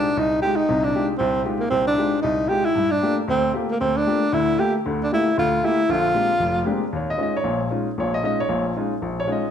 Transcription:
Already playing: D4
0.17 C2 D#4
0.42 G#3 D#4 F4 G4
0.56 D#4
0.69 C2 C3
0.84 D4
0.95 G#3 D#4 F4 G4
1.17 C2 C4
1.45 G#3 D#4 F4 G4
1.59 A#3
1.70 C2 C4
1.87 D4
1.98 G#3 D#4 F4 G4
2.22 C2 D#4
2.49 G#3 D#4 F4 G4
2.65 E4
2.75 G2
2.91 D4
3.02 A3 A#3 F4 G4
3.28 D2 C4
3.53 A3 A#3 F4 G4
3.71 A#3
3.80 D2 C4
3.97 D4
4.06 A3 A#3 F4 G4
4.32 D2 D3 E4
4.58 A3 A#3 F4 G4
4.86 D2 D3
5.03 D4
5.12 A3 A#3 E4 F4 G4
5.37 D2 D3 F4
5.63 A3 A#3 E4 F4 G4
5.89 A#1 D3 F4
6.14 G#3 A#3 C4 D4 G4
6.40 F1
6.65 G#3 A#3 C4 D4 G4
6.93 D#2 C#5
7.10 D#5
7.18 G#3 C#4 D#4 F4
7.23 D#5
7.36 C#5
7.44 A#1 A#2
7.70 G#3 C#4 D#4 F4
7.98 A#1 A#2 C#5
8.14 D#5
8.23 G#3 C#4 D#4 F4 D#5
8.40 C#5
8.49 A#1 A#2
8.76 G#3 C#4 D#4 F4
9.02 A#1
9.20 C#5
9.27 G#3 C#4 D#4 F4
9.32 D#5

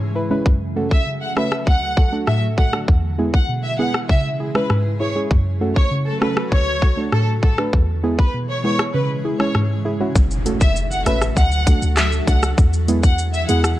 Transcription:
Already playing: G#2 C#3 E3 G#3 E4 G#4
0.15 E4 B4
0.30 G#3 C#4 E4 B4
0.46 F#2 F#3 A3 F#4 A4, kick
0.76 A3 C#4 F#4 A4
0.91 E5, kick
1.06 C#3
1.22 F#5
1.36 A3 C#4 F#4 B4 E5, cross-stick
1.52 cross-stick
1.67 D2 D3 F#5, kick
1.97 F#4 A4, kick
2.12 A3 D4 F#4 A4
2.27 A2 E5, cross-stick
2.58 F#4 A4 F#5, kick
2.73 A3 D4 F#4 A4, cross-stick
2.88 E2 B2 E3 G#3 E4 G#4, kick
3.18 G#3 B3 E4 G#4
3.34 F#5, kick
3.49 B2
3.64 E5
3.79 G#3 B3 E4 G#4 F#5
3.94 cross-stick
4.09 C#3 G#4 E5, kick
4.40 E4 G#4
4.55 G#3 C#4 E4 B4, cross-stick
4.70 G#2, cross-stick
5.00 E4 G#4 C#5
5.15 G#3 C#4 E4 G#4
5.31 F#2 F#3 A3 F#4 A4, kick
5.61 A3 C#4 F#4 A4
5.76 C#5, kick
5.91 C#3
6.07 A4
6.21 A3 C#4 F#4 A4 B4, cross-stick
6.37 cross-stick
6.52 D2 D3 C#5, kick
6.82 F#4 A4, kick
6.97 A3 D4 F#4 A4
7.12 A2 A4, cross-stick
7.43 F#4 A4, kick
7.58 A3 D4 F#4 B4, cross-stick
7.73 E2 B2 E3 G#3 E4 G#4, kick
8.03 G#3 B3 E4 G#4
8.19 B4, kick
8.34 B2
8.49 C#5
8.64 G#3 B3 E4 G#4 C#5
8.79 cross-stick
8.94 C#3 G#3 B4
9.24 E4 G#4
9.40 G#3 C#4 E4 G#4 C#5, cross-stick
9.55 G#2, cross-stick
9.85 E4 G#4
10.00 G#3 C#4 E4 F#4
10.15 F#1 C#3 F#3 A3 F#4 A4, kick, impact, shaker
10.31 shaker
10.46 A3 C#4 F#4 A4, closed hi-hat, shaker
10.61 E5, kick, shaker
10.76 shaker
10.91 F#5, shaker
11.06 A1 A3 C#4 F#4 B4 E5, cross-stick, closed hi-hat, shaker
11.22 cross-stick, shaker
11.37 D2 A3 D4 A4 F#5, kick, shaker
11.52 shaker
11.67 A3 D4 F#4 A4, kick, closed hi-hat, shaker
11.82 D2, shaker
11.97 E5, cross-stick, clap, shaker
12.12 shaker
12.27 C#2 A3 D4 F#4 A4 F#5, kick, closed hi-hat, shaker
12.43 cross-stick, shaker
12.58 E2 B2 E3 G#3 E4 G#4, kick, shaker
12.73 shaker
12.88 G#3 B3 E4 G#4, closed hi-hat, shaker
13.03 F#5, kick, shaker
13.18 shaker
13.34 E5, shaker
13.49 E2 G#3 B3 E4 G#4 F#5, closed hi-hat, shaker
13.64 cross-stick, shaker

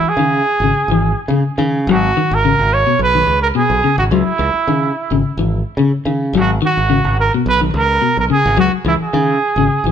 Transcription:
Already playing: E3 E4
0.04 muted fingered electric bass stroke
0.09 G#4
0.17 C#3 D#3
0.60 G#1 C#3
0.88 G#1 E3
1.28 C#3
1.58 C#3 D#3
1.87 G#1 F#3
1.93 F#4
2.17 D#3
2.31 G#1 A#4
2.45 C#3
2.59 G#1
2.73 C#5
2.87 B2
2.99 B1 B4
3.15 D#3
3.27 C#2
3.42 A#4
3.55 B2 G#4
3.70 B1
3.82 C#3, muted fingered electric bass stroke
3.98 G#1 F#4
4.11 C#2 F#3 E4
4.39 C#2, muted clean electric guitar stroke
4.54 muted fingered electric bass stroke
4.67 C#3 D#3
5.11 G#1 C#3
5.37 G#1 E3
5.77 C#3
6.05 C#3 D#3
6.33 G#1 F#3
6.40 F#4
6.62 D#3 F#4
6.77 G#1
6.90 C#3
7.05 G#1
7.20 A#4
7.34 B2
7.46 B1 B4
7.61 D#3
7.74 C#2 A#4
8.02 B2
8.17 B1 A#4
8.30 C#3 G#4, muted fingered electric bass stroke
8.46 G#1
8.57 C#2 F#3 F#4
8.73 muted fingered electric bass stroke
8.85 C#2 E3 E4
9.01 G#4, muted fingered electric bass stroke
9.13 C#3 D#3
9.56 G#1 C#3
9.84 G#1 E3

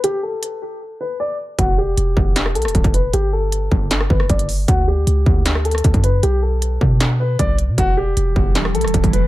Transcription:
0.04 G4, closed hi-hat
0.23 A4
0.43 closed hi-hat
1.01 B4
1.20 D5
1.59 E1 F#4, kick, closed hi-hat
1.78 G4
1.97 E1, closed hi-hat
2.17 E1, kick
2.36 snare, closed hi-hat
2.46 cross-stick
2.55 B1 A4, closed hi-hat
2.62 E1, cross-stick, closed hi-hat
2.68 closed hi-hat
2.75 D1, kick, closed hi-hat
2.84 E1, kick, closed hi-hat
2.94 B4, closed hi-hat
3.13 G1 G4, closed hi-hat
3.33 A4
3.52 closed hi-hat
3.71 G1, kick
3.91 snare, closed hi-hat
4.00 cross-stick
4.10 G1 B4, kick
4.20 cross-stick
4.29 G1 D5, kick, closed hi-hat
4.39 closed hi-hat
4.49 open hi-hat
4.68 D2 F#4, kick, closed hi-hat
4.88 G4
5.07 C#2, closed hi-hat
5.26 D2, kick
5.46 snare, closed hi-hat
5.55 cross-stick
5.65 A4, closed hi-hat
5.71 cross-stick, closed hi-hat
5.78 closed hi-hat
5.84 D2, kick, closed hi-hat
5.94 F#2, kick, closed hi-hat
6.04 B4, closed hi-hat
6.23 B1 G4, closed hi-hat
6.42 A4
6.62 closed hi-hat
6.81 B2, kick
7.00 snare, closed hi-hat
7.20 B4
7.39 B1 D5, kick, closed hi-hat
7.58 closed hi-hat
7.68 B2
7.78 E1 E3 G3 F#4, kick, closed hi-hat
7.97 G4
8.17 E1, closed hi-hat
8.36 E1, kick
8.55 snare, closed hi-hat
8.65 cross-stick
8.75 B1 A4, closed hi-hat
8.81 E1, cross-stick, closed hi-hat
8.88 closed hi-hat
8.94 D1, kick, closed hi-hat
9.04 E1, kick, closed hi-hat
9.13 B4, closed hi-hat

